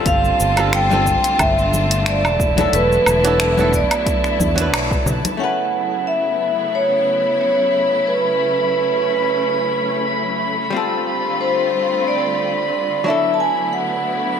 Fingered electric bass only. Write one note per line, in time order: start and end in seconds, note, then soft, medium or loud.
0.06 0.30 G1 medium
0.40 1.16 G1 medium
1.39 2.25 G1 medium
2.25 2.66 E1 medium
2.73 2.97 E1 medium
3.07 3.83 E1 medium
4.40 4.73 E2 medium
4.73 4.97 B1 medium
5.06 5.19 B1 medium